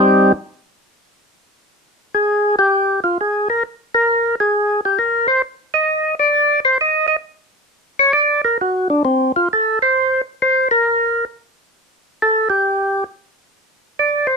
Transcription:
X:1
M:4/4
L:1/8
Q:"Swing" 1/4=134
K:Cdor
V:1 name="Tonewheel organ"
[G,CEG] z6 z | z _A2 G2 F A B | z B2 _A2 G B c | z e2 d2 c e e |
z3 _d =d B _G D | C F A c2 z c B- | B2 z4 A G- | G2 z4 d c |]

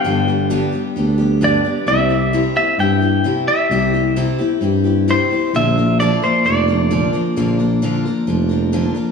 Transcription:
X:1
M:4/4
L:1/8
Q:1/4=131
K:Cmix
V:1 name="Clean electric guitar"
g2 z4 d2 | e3 e g3 e- | e2 z4 c2 | e2 d c d4- |
d6 z2 |]
V:2 name="Steel-string acoustic guitar"
[G,,D,G,=B,DG] [G,B,DG] [G,,D,G,B,DG] [G,B,DG] [G,B,DG] [G,B,DG] [G,,D,G,B,DG] [G,B,DG] | [C,G,CEG] [CEG] [C,G,CEG] [CEG] [G,CEG] [CEG] [C,G,CEG] [CEG] | [C,G,CEG] [CEG] [C,G,CEG] [CEG] [G,CEG] [CEG] [C,G,CEG] [CEG] | [B,,D,F,B,DB] [F,B,DB] [B,,D,F,B,DB] [F,B,DB] [F,B,DB] [F,B,DB] [B,,D,F,B,DB] [F,B,DB] |
[B,,D,F,B,DB] [F,B,DB] [B,,D,F,B,DB] [F,B,DB] [F,B,DB] [F,B,DB] [B,,D,F,B,DB] [F,B,DB] |]
V:3 name="Tuba" clef=bass
G,,,4 D,,4 | C,,4 G,,3 z | C,,4 G,,4 | B,,,4 F,,,4 |
B,,,3 z F,,,4 |]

